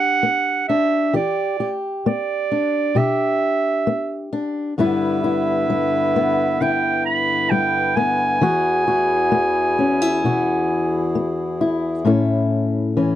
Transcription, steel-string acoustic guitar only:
Already playing: B2 D4 G4
0.23 B3
0.69 D4
1.13 E3 G4
1.60 G4
2.06 B3
2.51 D4
2.95 B2 G4
3.87 B3
4.33 D4
4.78 G2 G3 B3 E4
5.24 E4
5.70 G3
6.16 B3
6.61 D3 E4
7.51 G3
7.97 B3
8.41 E3 F#4
8.88 F#4
9.32 B3
9.79 C#4
10.02 E4
10.24 B2 F#4
11.15 B3
11.61 E4
12.05 A2 C#4 E4 A4
12.97 E3 C#4

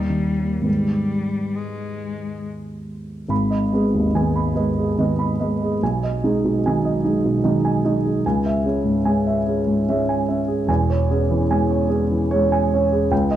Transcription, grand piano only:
Already playing: D#2
0.10 D#3
0.38 A#3
0.61 G#2 D#3 G#3 B3
3.28 G#1 G#2 B5
3.51 D#5
3.73 G#3 B3 G#4
3.94 D#2
4.15 D#3 G#3 B3 G#5
4.36 B5
4.56 G#3 B3 D#5
4.78 G#4
4.98 D#3 G#3 B3 D#5
5.19 B5
5.40 G#3 B3 D#5
5.62 G#4
5.83 B1 G#5
6.03 D#5
6.23 G#3 D#4 G#4
6.45 B2
6.66 D#3 G#3 D#4 G#5
6.85 D#5
7.04 G#3 D#4 G#4
7.25 B2
7.44 D#3 G#3 D#4 D#5
7.65 G#5
7.85 G#3 D#4 D#5
8.05 G#4
8.26 C#2 G#5
8.46 E5
8.65 C#4 G#4
8.85 G#2
9.05 G#3 C#4 G#5
9.27 E5
9.46 C#4 G#4
9.67 G#2
9.89 G#3 C#4 E5
10.09 G#5
10.28 C#4 E5
10.48 G#4
10.67 E1 E2 G#5
10.90 C#5
11.10 C#4 G#4
11.31 E3
11.50 G#3 C#4 G#5
11.70 C#5
11.89 C#4 G#4
12.12 E3
12.31 G#3 C#4 C#5
12.52 G#5
12.74 C#4 C#5
12.92 G#4
13.11 C#2 G5
13.31 D#5

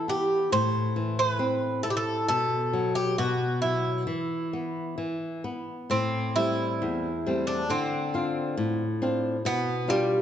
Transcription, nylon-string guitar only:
Already playing: E3
0.08 B3
0.52 A2
0.96 E3
1.39 C4
1.84 E4
2.29 B2
2.73 F#3
3.18 B2
3.63 F#3
4.07 E3
4.53 B3
4.98 E3
5.44 B3
5.90 A2
6.36 G3 A3 C4
6.82 E2
7.26 G3 A3 C4
7.70 D3
8.14 C4 D4 F4
8.57 A2
9.02 C4 D4 F4
9.45 B2
9.88 B3 D4 F4

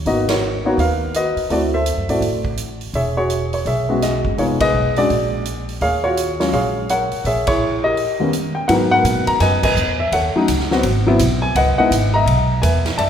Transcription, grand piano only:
0.06 A#3 B3 D#4 F#4 B4 D#5
0.30 F#4 A#4 C#5
0.65 A#3 B3 D#4 F#4 C#5
0.80 A#4 B4 F5
1.16 F#4 B4 D#5
1.50 A3 C4 E4 F#4 A4 D5
1.74 A4 C5 E5
2.09 A3 C4 E4 F#4 A4 D5
2.95 G#4 C#5 E5
3.17 F#4 G#4 C#5
3.54 C#5
3.67 G#4 C#5 E5
3.89 G#3 B3 C#4 F#4
4.03 F#4 G#4 D#5
4.38 G#3 B3 D#4 F4 G#4 C#5
4.61 G#4 B4 D#5
4.97 G#3 C#4 D4 F#4 G#4 D5
5.82 G#4 C#5 F5
6.04 F4 F#4 C#5
6.40 F#3 G#3 C#4 F4 C#5
6.53 G#4 C#5 F5
6.90 A#4 C#5 F#5
7.26 G#4 C#5 E5
7.48 E4 G#4 C#5
7.84 G4 A#4 D#5
8.20 D#2 G3 A#3 B3 C#4
8.55 G5
8.68 F#3 G#3 B3 D#4 A#4 B4 F#5
8.91 A#4 B4 F#5
9.27 A#5
9.41 B4 D#5 G#5
9.63 B4 D#5 G#5
10.00 E5
10.13 A4 C#5 F#5
10.36 F#3 A3 C#4 D#4
10.71 F#3 B3 C4 F#4
11.07 F#3 B3 C4 E4
11.42 G#5
11.56 B4 D#5 F#5
11.78 G#3 B3 D#4 E4 B4 D#5 F#5
12.14 D#5 E5 A#5
12.62 B4 E5 G#5
12.98 D5 E5 A5

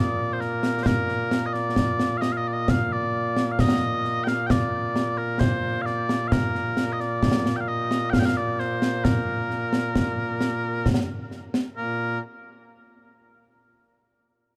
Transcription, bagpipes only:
Already playing: A#2 A#3 D5
0.33 C5
0.41 A#4
0.83 A#4 C5
1.46 D#5
1.53 D5
2.17 D#5 F5
2.32 F5
2.37 D#5
2.48 D5
2.53 D#5
2.70 F5
2.93 D5
3.52 F5
3.60 D#5
4.24 G5
4.28 F5
4.47 G5
4.51 D5
5.18 A#4
5.40 C5
5.82 F5
5.86 D5
6.28 F5
6.32 A#4
6.93 D#5
7.00 D5
7.56 G5
7.61 F5
7.68 D#5
8.10 F5 G5
8.20 G5
8.26 F5
8.37 D5
8.60 C5
9.04 A#4
11.77 A#2 A#3 A#4

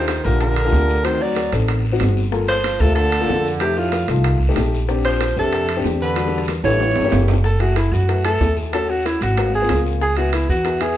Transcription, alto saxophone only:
Already playing: C5
0.24 A#4
0.41 A#4
1.05 C5
1.22 D5
2.48 C5
2.80 A4
2.95 A4
3.61 G4
3.78 F4
5.05 C5
5.39 A4
6.02 B4
6.65 C#5
7.45 A4
7.60 F#4
7.77 E4
7.93 F#4
8.25 A4
8.74 A4
8.90 F#4
9.06 E4
9.23 F#4
9.55 G#4
10.02 G#4
10.18 F#4
10.34 E4
10.49 F#4
10.82 G#4

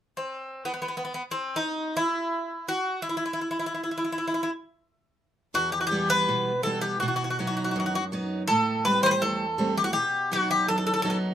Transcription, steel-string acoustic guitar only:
5.54 E2
5.91 E3 G3 B3
6.29 B2
6.65 E3 G3 B3
7.02 B2
7.39 F#3 B3 D#4
7.76 F#2
8.12 F#3 B3 D#4
8.50 A2
8.86 G3 A3 C4
9.22 E2
9.58 G3 A3 C4
9.95 B2
10.31 F#3 B3 D#4
10.69 F#2
11.05 F#3 B3 D#4

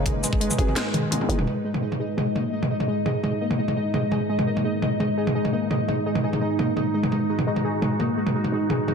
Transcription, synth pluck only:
0.06 G#3
0.23 G#3
0.41 G#3
0.58 G#4
0.76 G#3
0.93 D#3
1.11 G#3
1.29 D#3
1.47 G#3
1.64 G#3
1.82 G#3
2.00 G#4
2.17 G#3
2.35 A#3
2.53 G#3
2.70 G#3
2.88 G#3
3.06 G#4
3.23 G#3
3.41 A#3
3.59 G#3
3.77 G#3
3.94 G#3
4.12 G#4
4.29 G#3
4.47 A#3
4.64 G#3
4.82 G#3
5.00 G#3
5.18 G#4
5.35 G#3
5.53 A#3
5.71 G#3
5.88 G#3
6.06 G#3
6.24 G#4
6.41 G#3
6.59 A#3
6.76 G#3
6.94 G#3
7.12 G#3
7.30 G#3
7.47 G#3
7.65 G#4
7.82 G#3
7.99 A#3
8.17 G#3
8.35 G#3
8.52 G#3
8.70 G#4
8.88 G#3

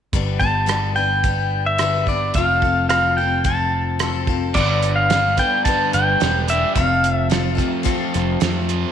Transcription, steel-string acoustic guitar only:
0.13 G2 D3 G3 B3 D4 B4
0.39 G3 B3 D4 B4
0.66 G2 D3 G3 B3 D4 B4
0.96 G3 B3 D4 B4
1.24 G3 B3 D4 B4
1.80 G2 D3 G3 B3 D4 B4
2.08 G3 B3 D4 B4
2.36 F3 C4 F4 A4
2.62 C4 F4 A4
2.90 F3 C4 F4 A4
3.18 C4 F4 A4
3.44 F3 C4 F4 A4
4.00 F3 C4 F4 A4
4.27 C4 F4 A4
4.55 G2 D3 G3 B3 D4 B4
5.10 G3 B3 D4 B4
5.37 G3 B3 D4 B4
5.66 G2 D3 G3 B3 D4 B4
6.20 G3 B3 D4 B4
6.48 G3 B3 D4 B4
6.75 F3 C4 F4 A4
7.29 F3 C4 F4 A4
7.55 C4 F4 A4
7.83 F3 C4 F4 A4
8.40 F3 C4 F4 A4

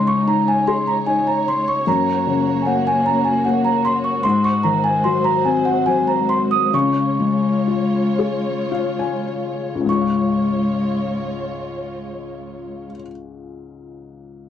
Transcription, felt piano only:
Already playing: C#3 G#3
0.27 D#4
0.68 G#4
1.07 D#4
1.87 F#2
2.27 C#3
2.66 A#3
3.06 C#4
3.46 A#3
4.25 G#2
4.64 D#3
5.05 F#3
5.45 C4
5.87 F#3
6.74 C#3
7.20 G#3
7.67 F4
8.19 G#4
8.71 F4 F5
8.99 G#5
9.76 C#2
9.81 G#2
9.86 G#3
9.91 F4
9.96 C#5
10.01 F5

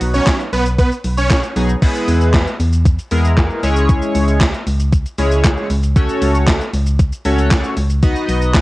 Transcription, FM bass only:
0.01 B1
0.53 B1
1.04 B1
1.56 B1
2.08 E2
2.60 E2
3.12 E2
3.63 C#2
4.15 C#2
4.67 C#2
5.18 C#2
5.70 C#2
6.22 C#2
6.74 C#2
7.25 C#2
7.77 C#2
8.29 B1

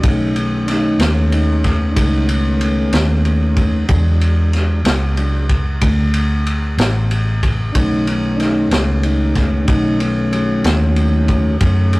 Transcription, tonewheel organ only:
0.01 D#3 A3 D4
0.05 C#4 D#4
0.38 B3
0.66 D4
0.71 D#4
1.01 B3
1.33 D#4
1.64 B3
1.90 D4
1.95 D#4
2.26 B3
2.59 B3
3.88 F#3 G#3 D4
5.17 F#3 G#3 D4
7.72 D#3 A3 C#4 D4
7.77 D#4
8.10 B3
8.36 D4
8.41 D#4
8.73 B3
9.04 D#4
9.37 B3
9.64 D4
9.69 D#4
10.01 B3
10.34 F#3 A3
11.61 D#3 A3 C#4
11.94 G#4

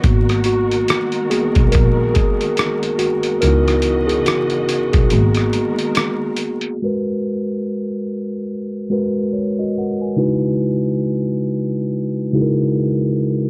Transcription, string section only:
Already playing: F#4
0.04 D#3 G#3 A#4
3.42 C#3 E3 F#4 D#5
5.11 D#3 G#3 A#4

